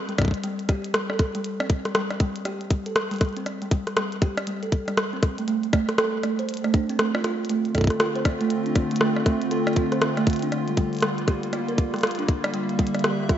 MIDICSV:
0, 0, Header, 1, 4, 480
1, 0, Start_track
1, 0, Tempo, 504202
1, 1376, Time_signature, 4, 2, 24, 8
1, 12737, End_track
2, 0, Start_track
2, 0, Title_t, "Analog synth pad"
2, 0, Program_c, 0, 89
2, 7136, Note_on_c, 0, 50, 80
2, 7136, Note_on_c, 0, 57, 75
2, 7136, Note_on_c, 0, 60, 75
2, 7136, Note_on_c, 0, 65, 86
2, 9987, Note_off_c, 0, 57, 0
2, 9987, Note_off_c, 0, 60, 0
2, 10015, Note_on_c, 0, 55, 71
2, 10016, Note_on_c, 0, 58, 70
2, 11898, Note_off_c, 0, 65, 0
2, 11936, Note_on_c, 0, 76, 88
2, 12737, Note_off_c, 0, 50, 0
2, 12737, Note_off_c, 0, 55, 0
2, 12737, Note_off_c, 0, 58, 0
2, 12737, Note_off_c, 0, 76, 0
2, 12737, End_track
3, 0, Start_track
3, 0, Title_t, "Kalimba"
3, 0, Program_c, 1, 108
3, 85, Note_on_c, 1, 55, 77
3, 165, Note_off_c, 1, 55, 0
3, 176, Note_on_c, 1, 55, 100
3, 247, Note_off_c, 1, 55, 0
3, 416, Note_on_c, 1, 55, 103
3, 534, Note_off_c, 1, 55, 0
3, 656, Note_on_c, 1, 67, 103
3, 774, Note_off_c, 1, 67, 0
3, 896, Note_on_c, 1, 55, 80
3, 1014, Note_off_c, 1, 55, 0
3, 1045, Note_on_c, 1, 69, 80
3, 1088, Note_off_c, 1, 69, 0
3, 1285, Note_on_c, 1, 55, 98
3, 1357, Note_off_c, 1, 55, 0
3, 1525, Note_on_c, 1, 60, 77
3, 1597, Note_off_c, 1, 60, 0
3, 1764, Note_on_c, 1, 55, 76
3, 1844, Note_off_c, 1, 55, 0
3, 1856, Note_on_c, 1, 55, 99
3, 1927, Note_off_c, 1, 55, 0
3, 2096, Note_on_c, 1, 55, 104
3, 2214, Note_off_c, 1, 55, 0
3, 2336, Note_on_c, 1, 67, 102
3, 2454, Note_off_c, 1, 67, 0
3, 2576, Note_on_c, 1, 55, 80
3, 2694, Note_off_c, 1, 55, 0
3, 2725, Note_on_c, 1, 69, 74
3, 2768, Note_off_c, 1, 69, 0
3, 2965, Note_on_c, 1, 55, 104
3, 3037, Note_off_c, 1, 55, 0
3, 3205, Note_on_c, 1, 60, 75
3, 3277, Note_off_c, 1, 60, 0
3, 3445, Note_on_c, 1, 55, 79
3, 3525, Note_off_c, 1, 55, 0
3, 3536, Note_on_c, 1, 55, 100
3, 3607, Note_off_c, 1, 55, 0
3, 3776, Note_on_c, 1, 55, 101
3, 3894, Note_off_c, 1, 55, 0
3, 4016, Note_on_c, 1, 67, 105
3, 4134, Note_off_c, 1, 67, 0
3, 4256, Note_on_c, 1, 55, 83
3, 4374, Note_off_c, 1, 55, 0
3, 4405, Note_on_c, 1, 69, 78
3, 4448, Note_off_c, 1, 69, 0
3, 4645, Note_on_c, 1, 55, 96
3, 4718, Note_off_c, 1, 55, 0
3, 4885, Note_on_c, 1, 60, 79
3, 4958, Note_off_c, 1, 60, 0
3, 5125, Note_on_c, 1, 57, 76
3, 5204, Note_off_c, 1, 57, 0
3, 5216, Note_on_c, 1, 57, 104
3, 5287, Note_off_c, 1, 57, 0
3, 5456, Note_on_c, 1, 57, 100
3, 5574, Note_off_c, 1, 57, 0
3, 5696, Note_on_c, 1, 69, 103
3, 5814, Note_off_c, 1, 69, 0
3, 5936, Note_on_c, 1, 57, 77
3, 6054, Note_off_c, 1, 57, 0
3, 6084, Note_on_c, 1, 72, 76
3, 6128, Note_off_c, 1, 72, 0
3, 6324, Note_on_c, 1, 57, 100
3, 6397, Note_off_c, 1, 57, 0
3, 6416, Note_on_c, 1, 62, 79
3, 6487, Note_off_c, 1, 62, 0
3, 6565, Note_on_c, 1, 60, 97
3, 6608, Note_off_c, 1, 60, 0
3, 6656, Note_on_c, 1, 57, 83
3, 6774, Note_off_c, 1, 57, 0
3, 6805, Note_on_c, 1, 65, 78
3, 6877, Note_off_c, 1, 65, 0
3, 6896, Note_on_c, 1, 65, 100
3, 6967, Note_off_c, 1, 65, 0
3, 7136, Note_on_c, 1, 57, 102
3, 7254, Note_off_c, 1, 57, 0
3, 7376, Note_on_c, 1, 69, 102
3, 7494, Note_off_c, 1, 69, 0
3, 7616, Note_on_c, 1, 65, 102
3, 7734, Note_off_c, 1, 65, 0
3, 7765, Note_on_c, 1, 72, 77
3, 7808, Note_off_c, 1, 72, 0
3, 8005, Note_on_c, 1, 57, 102
3, 8077, Note_off_c, 1, 57, 0
3, 8245, Note_on_c, 1, 62, 75
3, 8317, Note_off_c, 1, 62, 0
3, 8485, Note_on_c, 1, 57, 77
3, 8564, Note_off_c, 1, 57, 0
3, 8576, Note_on_c, 1, 57, 99
3, 8647, Note_off_c, 1, 57, 0
3, 8816, Note_on_c, 1, 57, 100
3, 8934, Note_off_c, 1, 57, 0
3, 9056, Note_on_c, 1, 69, 103
3, 9174, Note_off_c, 1, 69, 0
3, 9296, Note_on_c, 1, 65, 101
3, 9414, Note_off_c, 1, 65, 0
3, 9445, Note_on_c, 1, 72, 76
3, 9488, Note_off_c, 1, 72, 0
3, 9685, Note_on_c, 1, 57, 102
3, 9757, Note_off_c, 1, 57, 0
3, 9925, Note_on_c, 1, 62, 77
3, 9997, Note_off_c, 1, 62, 0
3, 10165, Note_on_c, 1, 55, 77
3, 10245, Note_off_c, 1, 55, 0
3, 10256, Note_on_c, 1, 55, 105
3, 10327, Note_off_c, 1, 55, 0
3, 10496, Note_on_c, 1, 55, 98
3, 10614, Note_off_c, 1, 55, 0
3, 10736, Note_on_c, 1, 67, 102
3, 10854, Note_off_c, 1, 67, 0
3, 10975, Note_on_c, 1, 65, 102
3, 11094, Note_off_c, 1, 65, 0
3, 11125, Note_on_c, 1, 70, 81
3, 11168, Note_off_c, 1, 70, 0
3, 11364, Note_on_c, 1, 55, 99
3, 11437, Note_off_c, 1, 55, 0
3, 11604, Note_on_c, 1, 62, 80
3, 11677, Note_off_c, 1, 62, 0
3, 11844, Note_on_c, 1, 55, 79
3, 11924, Note_off_c, 1, 55, 0
3, 11936, Note_on_c, 1, 55, 102
3, 12007, Note_off_c, 1, 55, 0
3, 12175, Note_on_c, 1, 55, 108
3, 12294, Note_off_c, 1, 55, 0
3, 12415, Note_on_c, 1, 67, 102
3, 12534, Note_off_c, 1, 67, 0
3, 12655, Note_on_c, 1, 65, 99
3, 12737, Note_off_c, 1, 65, 0
3, 12737, End_track
4, 0, Start_track
4, 0, Title_t, "Drums"
4, 84, Note_on_c, 9, 42, 38
4, 175, Note_off_c, 9, 42, 0
4, 175, Note_on_c, 9, 37, 84
4, 175, Note_on_c, 9, 42, 85
4, 176, Note_on_c, 9, 36, 103
4, 206, Note_off_c, 9, 36, 0
4, 206, Note_on_c, 9, 36, 82
4, 235, Note_off_c, 9, 36, 0
4, 235, Note_on_c, 9, 36, 68
4, 265, Note_off_c, 9, 36, 0
4, 265, Note_on_c, 9, 36, 54
4, 270, Note_off_c, 9, 37, 0
4, 270, Note_off_c, 9, 42, 0
4, 295, Note_off_c, 9, 36, 0
4, 295, Note_on_c, 9, 36, 47
4, 323, Note_on_c, 9, 42, 53
4, 390, Note_off_c, 9, 36, 0
4, 415, Note_off_c, 9, 42, 0
4, 415, Note_on_c, 9, 42, 80
4, 510, Note_off_c, 9, 42, 0
4, 564, Note_on_c, 9, 42, 38
4, 655, Note_off_c, 9, 42, 0
4, 655, Note_on_c, 9, 37, 55
4, 655, Note_on_c, 9, 42, 85
4, 656, Note_on_c, 9, 36, 116
4, 750, Note_off_c, 9, 37, 0
4, 750, Note_off_c, 9, 42, 0
4, 751, Note_off_c, 9, 36, 0
4, 804, Note_on_c, 9, 42, 55
4, 896, Note_off_c, 9, 42, 0
4, 896, Note_on_c, 9, 37, 120
4, 896, Note_on_c, 9, 42, 85
4, 991, Note_off_c, 9, 37, 0
4, 991, Note_off_c, 9, 42, 0
4, 1044, Note_on_c, 9, 37, 57
4, 1135, Note_off_c, 9, 37, 0
4, 1135, Note_on_c, 9, 37, 65
4, 1135, Note_on_c, 9, 42, 84
4, 1136, Note_on_c, 9, 36, 121
4, 1230, Note_off_c, 9, 37, 0
4, 1230, Note_off_c, 9, 42, 0
4, 1231, Note_off_c, 9, 36, 0
4, 1284, Note_on_c, 9, 42, 55
4, 1375, Note_off_c, 9, 42, 0
4, 1375, Note_on_c, 9, 42, 81
4, 1470, Note_off_c, 9, 42, 0
4, 1524, Note_on_c, 9, 37, 79
4, 1524, Note_on_c, 9, 42, 39
4, 1615, Note_off_c, 9, 42, 0
4, 1615, Note_on_c, 9, 42, 85
4, 1616, Note_on_c, 9, 36, 115
4, 1620, Note_off_c, 9, 37, 0
4, 1710, Note_off_c, 9, 42, 0
4, 1711, Note_off_c, 9, 36, 0
4, 1764, Note_on_c, 9, 37, 64
4, 1764, Note_on_c, 9, 42, 57
4, 1855, Note_off_c, 9, 37, 0
4, 1855, Note_off_c, 9, 42, 0
4, 1855, Note_on_c, 9, 37, 124
4, 1855, Note_on_c, 9, 42, 84
4, 1950, Note_off_c, 9, 37, 0
4, 1950, Note_off_c, 9, 42, 0
4, 2004, Note_on_c, 9, 37, 53
4, 2004, Note_on_c, 9, 42, 37
4, 2095, Note_off_c, 9, 42, 0
4, 2095, Note_on_c, 9, 42, 88
4, 2096, Note_on_c, 9, 36, 124
4, 2099, Note_off_c, 9, 37, 0
4, 2190, Note_off_c, 9, 42, 0
4, 2191, Note_off_c, 9, 36, 0
4, 2244, Note_on_c, 9, 42, 54
4, 2335, Note_off_c, 9, 42, 0
4, 2335, Note_on_c, 9, 37, 53
4, 2335, Note_on_c, 9, 42, 82
4, 2430, Note_off_c, 9, 37, 0
4, 2430, Note_off_c, 9, 42, 0
4, 2484, Note_on_c, 9, 42, 39
4, 2575, Note_off_c, 9, 42, 0
4, 2575, Note_on_c, 9, 42, 83
4, 2576, Note_on_c, 9, 36, 123
4, 2671, Note_off_c, 9, 36, 0
4, 2671, Note_off_c, 9, 42, 0
4, 2724, Note_on_c, 9, 42, 56
4, 2815, Note_off_c, 9, 42, 0
4, 2815, Note_on_c, 9, 37, 124
4, 2815, Note_on_c, 9, 42, 83
4, 2911, Note_off_c, 9, 37, 0
4, 2911, Note_off_c, 9, 42, 0
4, 2964, Note_on_c, 9, 42, 37
4, 2987, Note_off_c, 9, 42, 0
4, 2987, Note_on_c, 9, 42, 30
4, 3009, Note_off_c, 9, 42, 0
4, 3009, Note_on_c, 9, 42, 25
4, 3033, Note_off_c, 9, 42, 0
4, 3033, Note_on_c, 9, 42, 21
4, 3056, Note_off_c, 9, 42, 0
4, 3056, Note_on_c, 9, 36, 107
4, 3056, Note_on_c, 9, 37, 66
4, 3056, Note_on_c, 9, 42, 86
4, 3093, Note_off_c, 9, 42, 0
4, 3093, Note_on_c, 9, 42, 14
4, 3130, Note_off_c, 9, 42, 0
4, 3130, Note_on_c, 9, 42, 11
4, 3151, Note_off_c, 9, 36, 0
4, 3151, Note_off_c, 9, 37, 0
4, 3167, Note_off_c, 9, 42, 0
4, 3167, Note_on_c, 9, 42, 10
4, 3205, Note_off_c, 9, 42, 0
4, 3205, Note_on_c, 9, 42, 55
4, 3296, Note_off_c, 9, 42, 0
4, 3296, Note_on_c, 9, 37, 50
4, 3296, Note_on_c, 9, 42, 80
4, 3391, Note_off_c, 9, 37, 0
4, 3391, Note_off_c, 9, 42, 0
4, 3445, Note_on_c, 9, 42, 38
4, 3536, Note_off_c, 9, 42, 0
4, 3536, Note_on_c, 9, 36, 127
4, 3536, Note_on_c, 9, 42, 84
4, 3631, Note_off_c, 9, 36, 0
4, 3631, Note_off_c, 9, 42, 0
4, 3685, Note_on_c, 9, 37, 62
4, 3685, Note_on_c, 9, 42, 54
4, 3776, Note_off_c, 9, 37, 0
4, 3776, Note_off_c, 9, 42, 0
4, 3776, Note_on_c, 9, 37, 127
4, 3776, Note_on_c, 9, 42, 84
4, 3871, Note_off_c, 9, 37, 0
4, 3871, Note_off_c, 9, 42, 0
4, 3925, Note_on_c, 9, 42, 36
4, 4016, Note_off_c, 9, 42, 0
4, 4016, Note_on_c, 9, 36, 127
4, 4016, Note_on_c, 9, 42, 84
4, 4111, Note_off_c, 9, 36, 0
4, 4111, Note_off_c, 9, 42, 0
4, 4165, Note_on_c, 9, 37, 75
4, 4165, Note_on_c, 9, 42, 53
4, 4256, Note_off_c, 9, 42, 0
4, 4256, Note_on_c, 9, 42, 79
4, 4260, Note_off_c, 9, 37, 0
4, 4351, Note_off_c, 9, 42, 0
4, 4405, Note_on_c, 9, 42, 37
4, 4496, Note_off_c, 9, 42, 0
4, 4496, Note_on_c, 9, 36, 107
4, 4496, Note_on_c, 9, 42, 81
4, 4591, Note_off_c, 9, 36, 0
4, 4591, Note_off_c, 9, 42, 0
4, 4644, Note_on_c, 9, 37, 53
4, 4644, Note_on_c, 9, 42, 55
4, 4736, Note_off_c, 9, 37, 0
4, 4736, Note_off_c, 9, 42, 0
4, 4736, Note_on_c, 9, 37, 126
4, 4736, Note_on_c, 9, 42, 82
4, 4831, Note_off_c, 9, 37, 0
4, 4831, Note_off_c, 9, 42, 0
4, 4976, Note_on_c, 9, 36, 127
4, 4976, Note_on_c, 9, 37, 66
4, 4976, Note_on_c, 9, 42, 84
4, 5071, Note_off_c, 9, 36, 0
4, 5071, Note_off_c, 9, 37, 0
4, 5071, Note_off_c, 9, 42, 0
4, 5124, Note_on_c, 9, 42, 54
4, 5215, Note_off_c, 9, 42, 0
4, 5215, Note_on_c, 9, 42, 77
4, 5310, Note_off_c, 9, 42, 0
4, 5364, Note_on_c, 9, 42, 36
4, 5455, Note_off_c, 9, 42, 0
4, 5455, Note_on_c, 9, 37, 77
4, 5455, Note_on_c, 9, 42, 79
4, 5456, Note_on_c, 9, 36, 127
4, 5551, Note_off_c, 9, 36, 0
4, 5551, Note_off_c, 9, 37, 0
4, 5551, Note_off_c, 9, 42, 0
4, 5604, Note_on_c, 9, 37, 66
4, 5604, Note_on_c, 9, 42, 51
4, 5695, Note_off_c, 9, 37, 0
4, 5695, Note_off_c, 9, 42, 0
4, 5695, Note_on_c, 9, 37, 127
4, 5695, Note_on_c, 9, 42, 79
4, 5791, Note_off_c, 9, 37, 0
4, 5791, Note_off_c, 9, 42, 0
4, 5935, Note_on_c, 9, 37, 53
4, 5935, Note_on_c, 9, 42, 80
4, 6030, Note_off_c, 9, 37, 0
4, 6030, Note_off_c, 9, 42, 0
4, 6084, Note_on_c, 9, 42, 51
4, 6176, Note_off_c, 9, 42, 0
4, 6176, Note_on_c, 9, 42, 74
4, 6225, Note_off_c, 9, 42, 0
4, 6225, Note_on_c, 9, 42, 62
4, 6256, Note_off_c, 9, 42, 0
4, 6256, Note_on_c, 9, 42, 49
4, 6324, Note_off_c, 9, 42, 0
4, 6324, Note_on_c, 9, 37, 51
4, 6324, Note_on_c, 9, 42, 36
4, 6415, Note_off_c, 9, 42, 0
4, 6415, Note_on_c, 9, 42, 79
4, 6416, Note_on_c, 9, 36, 124
4, 6419, Note_off_c, 9, 37, 0
4, 6511, Note_off_c, 9, 36, 0
4, 6511, Note_off_c, 9, 42, 0
4, 6564, Note_on_c, 9, 42, 54
4, 6655, Note_off_c, 9, 42, 0
4, 6655, Note_on_c, 9, 37, 122
4, 6655, Note_on_c, 9, 42, 78
4, 6751, Note_off_c, 9, 37, 0
4, 6751, Note_off_c, 9, 42, 0
4, 6804, Note_on_c, 9, 37, 77
4, 6895, Note_off_c, 9, 37, 0
4, 6895, Note_on_c, 9, 37, 65
4, 6895, Note_on_c, 9, 42, 82
4, 6990, Note_off_c, 9, 37, 0
4, 6990, Note_off_c, 9, 42, 0
4, 7090, Note_on_c, 9, 42, 53
4, 7136, Note_off_c, 9, 42, 0
4, 7136, Note_on_c, 9, 42, 76
4, 7231, Note_off_c, 9, 42, 0
4, 7284, Note_on_c, 9, 42, 35
4, 7376, Note_off_c, 9, 42, 0
4, 7376, Note_on_c, 9, 36, 54
4, 7376, Note_on_c, 9, 37, 53
4, 7376, Note_on_c, 9, 42, 78
4, 7406, Note_off_c, 9, 36, 0
4, 7406, Note_on_c, 9, 36, 66
4, 7435, Note_off_c, 9, 36, 0
4, 7435, Note_on_c, 9, 36, 79
4, 7465, Note_off_c, 9, 36, 0
4, 7465, Note_on_c, 9, 36, 90
4, 7471, Note_off_c, 9, 37, 0
4, 7471, Note_off_c, 9, 42, 0
4, 7495, Note_off_c, 9, 36, 0
4, 7495, Note_on_c, 9, 36, 103
4, 7524, Note_on_c, 9, 37, 62
4, 7524, Note_on_c, 9, 42, 50
4, 7590, Note_off_c, 9, 36, 0
4, 7615, Note_off_c, 9, 37, 0
4, 7615, Note_off_c, 9, 42, 0
4, 7615, Note_on_c, 9, 37, 124
4, 7615, Note_on_c, 9, 42, 78
4, 7710, Note_off_c, 9, 37, 0
4, 7710, Note_off_c, 9, 42, 0
4, 7764, Note_on_c, 9, 42, 35
4, 7855, Note_off_c, 9, 42, 0
4, 7855, Note_on_c, 9, 37, 79
4, 7855, Note_on_c, 9, 42, 79
4, 7856, Note_on_c, 9, 36, 106
4, 7951, Note_off_c, 9, 36, 0
4, 7951, Note_off_c, 9, 37, 0
4, 7951, Note_off_c, 9, 42, 0
4, 8004, Note_on_c, 9, 42, 51
4, 8095, Note_off_c, 9, 42, 0
4, 8095, Note_on_c, 9, 42, 74
4, 8190, Note_off_c, 9, 42, 0
4, 8244, Note_on_c, 9, 42, 34
4, 8335, Note_off_c, 9, 42, 0
4, 8335, Note_on_c, 9, 37, 50
4, 8335, Note_on_c, 9, 42, 77
4, 8336, Note_on_c, 9, 36, 116
4, 8430, Note_off_c, 9, 37, 0
4, 8430, Note_off_c, 9, 42, 0
4, 8431, Note_off_c, 9, 36, 0
4, 8484, Note_on_c, 9, 42, 53
4, 8530, Note_off_c, 9, 42, 0
4, 8530, Note_on_c, 9, 42, 80
4, 8575, Note_on_c, 9, 37, 124
4, 8625, Note_off_c, 9, 42, 0
4, 8670, Note_off_c, 9, 37, 0
4, 8724, Note_on_c, 9, 37, 52
4, 8816, Note_off_c, 9, 37, 0
4, 8816, Note_on_c, 9, 36, 118
4, 8816, Note_on_c, 9, 37, 64
4, 8816, Note_on_c, 9, 42, 78
4, 8911, Note_off_c, 9, 36, 0
4, 8911, Note_off_c, 9, 37, 0
4, 8911, Note_off_c, 9, 42, 0
4, 8964, Note_on_c, 9, 42, 51
4, 9056, Note_off_c, 9, 42, 0
4, 9056, Note_on_c, 9, 42, 75
4, 9151, Note_off_c, 9, 42, 0
4, 9205, Note_on_c, 9, 37, 77
4, 9205, Note_on_c, 9, 42, 34
4, 9215, Note_off_c, 9, 42, 0
4, 9215, Note_on_c, 9, 42, 27
4, 9265, Note_off_c, 9, 42, 0
4, 9265, Note_on_c, 9, 42, 23
4, 9295, Note_off_c, 9, 42, 0
4, 9295, Note_on_c, 9, 42, 76
4, 9296, Note_on_c, 9, 36, 106
4, 9300, Note_off_c, 9, 37, 0
4, 9390, Note_off_c, 9, 42, 0
4, 9391, Note_off_c, 9, 36, 0
4, 9444, Note_on_c, 9, 37, 60
4, 9444, Note_on_c, 9, 42, 51
4, 9535, Note_off_c, 9, 37, 0
4, 9535, Note_off_c, 9, 42, 0
4, 9535, Note_on_c, 9, 37, 119
4, 9535, Note_on_c, 9, 42, 77
4, 9630, Note_off_c, 9, 37, 0
4, 9630, Note_off_c, 9, 42, 0
4, 9684, Note_on_c, 9, 37, 51
4, 9684, Note_on_c, 9, 42, 35
4, 9775, Note_off_c, 9, 42, 0
4, 9775, Note_on_c, 9, 42, 75
4, 9776, Note_on_c, 9, 36, 117
4, 9779, Note_off_c, 9, 37, 0
4, 9805, Note_off_c, 9, 42, 0
4, 9805, Note_on_c, 9, 42, 61
4, 9835, Note_off_c, 9, 42, 0
4, 9835, Note_on_c, 9, 42, 51
4, 9865, Note_off_c, 9, 42, 0
4, 9865, Note_on_c, 9, 42, 41
4, 9871, Note_off_c, 9, 36, 0
4, 9895, Note_off_c, 9, 42, 0
4, 9895, Note_on_c, 9, 42, 34
4, 9924, Note_off_c, 9, 42, 0
4, 9924, Note_on_c, 9, 42, 49
4, 10016, Note_off_c, 9, 42, 0
4, 10016, Note_on_c, 9, 37, 54
4, 10016, Note_on_c, 9, 42, 75
4, 10111, Note_off_c, 9, 37, 0
4, 10111, Note_off_c, 9, 42, 0
4, 10164, Note_on_c, 9, 42, 35
4, 10255, Note_off_c, 9, 42, 0
4, 10255, Note_on_c, 9, 42, 78
4, 10256, Note_on_c, 9, 36, 111
4, 10350, Note_off_c, 9, 42, 0
4, 10351, Note_off_c, 9, 36, 0
4, 10404, Note_on_c, 9, 42, 24
4, 10423, Note_off_c, 9, 42, 0
4, 10423, Note_on_c, 9, 42, 28
4, 10441, Note_off_c, 9, 42, 0
4, 10441, Note_on_c, 9, 42, 33
4, 10459, Note_off_c, 9, 42, 0
4, 10459, Note_on_c, 9, 42, 39
4, 10477, Note_off_c, 9, 42, 0
4, 10477, Note_on_c, 9, 42, 44
4, 10496, Note_off_c, 9, 42, 0
4, 10496, Note_on_c, 9, 37, 115
4, 10496, Note_on_c, 9, 42, 76
4, 10591, Note_off_c, 9, 37, 0
4, 10591, Note_off_c, 9, 42, 0
4, 10645, Note_on_c, 9, 42, 37
4, 10736, Note_off_c, 9, 42, 0
4, 10736, Note_on_c, 9, 36, 101
4, 10736, Note_on_c, 9, 37, 61
4, 10736, Note_on_c, 9, 42, 78
4, 10831, Note_off_c, 9, 36, 0
4, 10831, Note_off_c, 9, 37, 0
4, 10831, Note_off_c, 9, 42, 0
4, 10885, Note_on_c, 9, 42, 52
4, 10976, Note_off_c, 9, 42, 0
4, 10976, Note_on_c, 9, 37, 53
4, 10976, Note_on_c, 9, 42, 76
4, 11071, Note_off_c, 9, 37, 0
4, 11071, Note_off_c, 9, 42, 0
4, 11125, Note_on_c, 9, 42, 37
4, 11216, Note_off_c, 9, 42, 0
4, 11216, Note_on_c, 9, 36, 116
4, 11216, Note_on_c, 9, 42, 79
4, 11311, Note_off_c, 9, 36, 0
4, 11311, Note_off_c, 9, 42, 0
4, 11365, Note_on_c, 9, 37, 59
4, 11365, Note_on_c, 9, 42, 23
4, 11388, Note_off_c, 9, 42, 0
4, 11388, Note_on_c, 9, 42, 27
4, 11411, Note_off_c, 9, 42, 0
4, 11411, Note_on_c, 9, 42, 30
4, 11433, Note_off_c, 9, 42, 0
4, 11433, Note_on_c, 9, 42, 34
4, 11456, Note_off_c, 9, 37, 0
4, 11456, Note_off_c, 9, 42, 0
4, 11456, Note_on_c, 9, 37, 117
4, 11456, Note_on_c, 9, 42, 80
4, 11493, Note_off_c, 9, 42, 0
4, 11493, Note_on_c, 9, 42, 41
4, 11529, Note_off_c, 9, 42, 0
4, 11529, Note_on_c, 9, 42, 44
4, 11551, Note_off_c, 9, 37, 0
4, 11567, Note_off_c, 9, 42, 0
4, 11567, Note_on_c, 9, 42, 47
4, 11604, Note_off_c, 9, 42, 0
4, 11604, Note_on_c, 9, 42, 36
4, 11695, Note_off_c, 9, 42, 0
4, 11695, Note_on_c, 9, 42, 78
4, 11696, Note_on_c, 9, 36, 119
4, 11791, Note_off_c, 9, 36, 0
4, 11791, Note_off_c, 9, 42, 0
4, 11844, Note_on_c, 9, 37, 81
4, 11844, Note_on_c, 9, 42, 52
4, 11935, Note_off_c, 9, 42, 0
4, 11935, Note_on_c, 9, 42, 80
4, 11939, Note_off_c, 9, 37, 0
4, 12030, Note_off_c, 9, 42, 0
4, 12084, Note_on_c, 9, 42, 37
4, 12175, Note_off_c, 9, 42, 0
4, 12175, Note_on_c, 9, 42, 77
4, 12176, Note_on_c, 9, 36, 101
4, 12250, Note_off_c, 9, 42, 0
4, 12250, Note_on_c, 9, 42, 60
4, 12271, Note_off_c, 9, 36, 0
4, 12324, Note_off_c, 9, 42, 0
4, 12324, Note_on_c, 9, 37, 58
4, 12324, Note_on_c, 9, 42, 54
4, 12370, Note_off_c, 9, 42, 0
4, 12370, Note_on_c, 9, 42, 43
4, 12415, Note_off_c, 9, 37, 0
4, 12415, Note_off_c, 9, 42, 0
4, 12415, Note_on_c, 9, 37, 115
4, 12415, Note_on_c, 9, 42, 78
4, 12510, Note_off_c, 9, 37, 0
4, 12510, Note_off_c, 9, 42, 0
4, 12656, Note_on_c, 9, 36, 113
4, 12656, Note_on_c, 9, 37, 63
4, 12656, Note_on_c, 9, 42, 81
4, 12737, Note_off_c, 9, 36, 0
4, 12737, Note_off_c, 9, 37, 0
4, 12737, Note_off_c, 9, 42, 0
4, 12737, End_track
0, 0, End_of_file